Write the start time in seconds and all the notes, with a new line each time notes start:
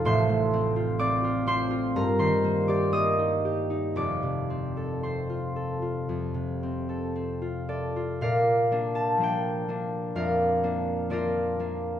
Already playing: C4 F4 A4
0.05 A1 A2 C5 C6
0.29 A3
0.53 C4
0.76 F4
0.99 C4 D5 D6
1.24 F4
1.47 C4 C5 C6
1.71 F4
1.96 G2 A#4 A#5
2.19 D#3 C5 C6
2.44 A#3
2.68 G4 D5 D6
2.92 A#3 D#5 D#6
3.19 D#4
3.45 G4
3.70 D#4
3.96 F1 F2 D5 D6
4.23 C3
4.50 C4
4.77 A4
5.03 C4 C5 C6
5.30 F4
5.56 A4
5.82 F4
6.09 F2
6.34 C3
6.63 C4
6.89 A4
7.16 C4
7.42 F4
7.69 A4 D5
7.96 F4
8.21 A#2 A#4 D5 F5
8.71 A#3 D4
8.95 A5
9.17 F3 A#3 D4
9.23 G5
9.69 A#3 D4
10.15 F2 A#4 D5 F5
10.63 A#3 D4
11.10 F3 A#3 D4 F4 A#4 D5
11.59 A#3 D4